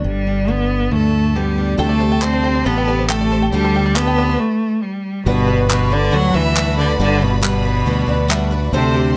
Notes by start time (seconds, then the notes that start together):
Already playing: D3 D4
0.04 G1 G2 G3
0.27 D4
0.48 D3 B3
0.91 D2 G2 A3 A4
1.35 D3 G3 B3 G4
1.58 D4
1.78 D2 C3 D3 G3 A3 C4 D4 G4 A4 G5
1.89 D5
2.00 C4 G4 A4 C5
2.12 G5
2.21 A3 C4 G4 A4 C5 D5, clap
2.34 C5
2.43 C4 G4 A4 G5
2.55 D5
2.64 A1 D3 A3 B3 C4 G4 A4 B4
2.78 G5
2.87 C4 G4 A4 D5
2.99 C5
3.09 A3 C4 G4 A4 G5, clap
3.21 D5
3.31 C4 G4 A4 C5
3.42 G5
3.52 D2 D3 G3 A3 C4 G4 A4
3.65 C5
3.74 C4 G4 A4 G5
3.86 D5
3.95 A3 B3 C4 G4 A4 B4, clap
4.07 G5
4.17 C4 G4 A4 D5
4.29 C5
4.39 A3
4.82 G3
5.26 G1 G2 B2 G3 B3 D4 F#4 B4 D5 F#5 B5
5.47 D4 F#4 B4
5.69 B2 G3 D4 F#4 B4, clap
5.90 D3 D4 F#4 B4 D5
6.11 D2 F#3 G3 D4 F#4 B4 F#5
6.33 D2 E3 D4 F#4 B4 E5
6.55 G3 D4 F#4 B4, clap
6.77 D3 D4 F#4 B4 D5
6.99 G1 G2 D3 G3 D4 F#4 B4 D5
7.21 B2 D4 F#4 B4
7.42 B2 G3 D4 F#4 B4, clap
7.64 D4 F#4 B4
7.86 D2 G3 D4 F#4 B4
8.07 D2 D4 F#4 B4 D5
8.28 G3 D4 F#4 B4 E5, clap
8.51 D4 F#4 B4
8.73 D2 C3 D3 A3 C4 D4 G4 A4 C5 G5 C6
8.94 C4 G4 A4